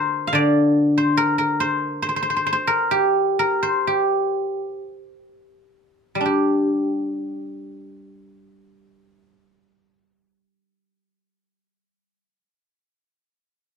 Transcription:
Already playing: D3 A#4 C5 D5
0.27 F5
0.33 D3 D5
0.98 C5
1.17 A#4
1.38 A#4
1.60 C5
2.02 C5
2.09 C5
2.16 C5
2.23 C5
2.30 C5
2.37 C5
2.47 C5
2.53 C5
2.67 A#4
2.91 G4
3.39 A#4
3.63 C5
3.87 G4
6.15 G3
6.21 D4
6.26 G4

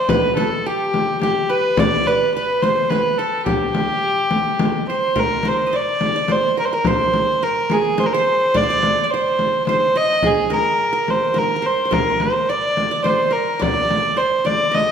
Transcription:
Already playing: C5 D5 E5
0.09 B4, frame drum
0.36 A4, frame drum
0.66 G4
0.94 frame drum
1.22 G4, frame drum
1.50 B4
1.77 D5, frame drum
2.06 B4, frame drum
2.35 B4
2.62 C5, frame drum
2.89 B4, frame drum
3.18 A4
3.46 G4, frame drum
3.75 frame drum
4.31 frame drum
4.59 frame drum
4.89 C5
5.16 A#4, frame drum
5.43 C5, frame drum
5.48 C5
5.67 D#5
5.73 D5
6.01 frame drum
6.16 D5
6.28 C5, frame drum
6.57 A#4
6.65 C5
6.73 A#4
6.85 C5, frame drum
7.14 frame drum
7.43 A#4
7.70 G#4, frame drum
7.98 C5, frame drum
8.06 A#4
8.13 C5
8.54 D5, frame drum
8.63 C5
8.70 D5
8.83 frame drum
9.03 D5
9.10 C5
9.39 frame drum
9.67 C5, frame drum
9.96 D#5
10.23 G#4, frame drum
10.50 A#4, frame drum
10.93 A#4
11.08 C5, frame drum
11.34 A#4, frame drum
11.56 A#4
11.62 C5
11.85 C5
11.91 A#4, frame drum
12.20 C5, frame drum
12.49 D5
12.77 frame drum
12.91 D5
13.04 C5, frame drum
13.31 A#4
13.59 D5, frame drum
13.91 frame drum
14.17 C5
14.45 D5, frame drum
14.71 D#5, frame drum

